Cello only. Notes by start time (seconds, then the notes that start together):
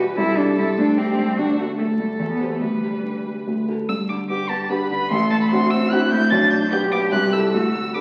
0.17 E4
0.37 D4
0.58 E4
0.78 D4
0.98 C4
1.38 D4
1.59 A3
1.79 A3
1.99 G3
2.19 A3
2.29 B3
2.51 A3
2.61 G3
4.30 G4
4.70 B4
5.11 A4
5.51 F#4
5.90 E4
6.30 D4
6.71 G4
7.53 F#4
7.94 B4